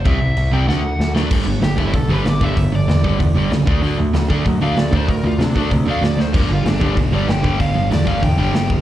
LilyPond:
<<
  \new Staff \with { instrumentName = "Overdriven electric guitar" } { \time 4/4 \key d \mixolydian \tempo 4 = 191 e''4. g''8 fis''4. r8 | r4 g'8 e'8 a'8 b'8 d''8 e''8~ | e''8 d''2. r8 | r2 r8 f''8 d''8 c''8 |
bes'8 f'8 d'8 d'8 r8 f''8 d''8 c''8 | bes'8 f'8 d'8 d'8 r8 d''8 g''4 | f''4 d''8 f''8 g''8 g''4 r8 | }
  \new Staff \with { instrumentName = "Distorted electric guitar" } { \clef bass \time 4/4 \key d \mixolydian <c g c'>8 r4 <c g c'>8 <d a d'>8 r4 <d a d'>8 | <g, d g>8 <g, d>8 <g, d>8 <g, d g>8 <g, d>8 <g, d g>8 <g, d>8 <g, d g>8 | <g, d>8 <g, d>8 <g, d>8 <g, d g>8 <g, d>8 <g, d g>8 <g, d>8 <d a d'>8 | <d a d'>8 <d a>8 <d a>8 <d a d'>8 <d a>8 <d a d'>8 <d a>8 <d a d'>8 |
<d a>8 <d a>8 <d a>8 <d a d'>8 <d a>8 <d a d'>8 <d a>8 <d a>8 | <g, d g>8 <g, d>8 <g, d>8 <g, d g>8 <g, d>8 <g, d g>8 <g, d>8 <g, d g>8 | <g, d>8 <g, d>8 <g, d>8 <g, d g>8 <g, d>8 <g, d g>8 <g, d>8 <g, d>8 | }
  \new Staff \with { instrumentName = "Distorted electric guitar" } { \clef bass \time 4/4 \key d \mixolydian r1 | r1 | r1 | r1 |
r1 | <g, d g>2~ <g, d g>8 <g, d g>8 <g, d g>4 | <g, d g>2~ <g, d g>8 <g, d g>8 <g, d g>4 | }
  \new Staff \with { instrumentName = "Overdriven electric guitar" } { \clef bass \time 4/4 \key d \mixolydian <c g c'>8 r4 <c g c'>8 <d a d'>8 r4 <d a d'>8 | <g, d g>8 <g, d>8 <g, d>8 <g, d g>8 <g, d>8 <g, d g>8 <g, d>8 <g, d g>8 | <g, d>8 <g, d>8 <g, d>8 <g, d g>8 <g, d>8 <g, d g>8 <g, d>8 <d a d'>8 | <d a d'>8 <d a>8 <d a>8 <d a d'>8 <d a>8 <d a d'>8 <d a>8 <d a d'>8 |
<d a>8 <d a>8 <d a>8 <d a d'>8 <d a>8 <d a d'>8 <d a>8 <d a>8 | <g, d g>8 <g, d>8 <g, d>8 <g, d g>8 <g, d>8 <g, d g>8 <g, d>8 <g, d g>8 | <g, d>8 <g, d>8 <g, d>8 <g, d g>8 <g, d>8 <g, d g>8 <g, d>8 <g, d>8 | }
  \new Staff \with { instrumentName = "Picked electric bass" } { \clef bass \time 4/4 \key d \mixolydian c,8 c,8 c,8 c,8 d,4 d,4 | g,,8 g,,8 g,,8 g,,8 b,,8 g,,8 g,,8 g,,8 | g,,8 g,,8 e,8 g,,8 e,8 g,,8 cis,8 d,8 | d,8 d,8 d,8 d,8 fis,8 d,8 d,8 d,8 |
d,8 d,8 c8 d,8 c8 d,8 d,8 d,8 | g,,8 g,,8 g,,8 g,,8 b,,8 g,,8 g,,8 g,,8 | g,,8 g,,8 e,8 g,,8 e,8 g,,8 g,,8 fis,,8 | }
  \new DrumStaff \with { instrumentName = "Drums" } \drummode { \time 4/4 <cymc bd>4 cymc4 sn4 sn8 sn8 | <cymc bd>4 <hho sn>8 bd8 <hho bd>4 <hho sn>8 bd8 | <hho bd>4 <hho sn>8 bd8 <hho bd>4 <hho sn>8 bd8 | hho4 <hho sn>8 bd8 <hho bd>4 <hho sn>8 bd8 |
<hho bd>4 <hho sn>8 bd8 <hho bd>4 <hho sn>8 sn8 | <cymc bd>4 <hho sn>8 bd8 <hho bd>4 <hho sn>8 bd8 | <hho bd>4 <hho sn>8 bd8 <hho bd>4 <hho sn>8 bd8 | }
>>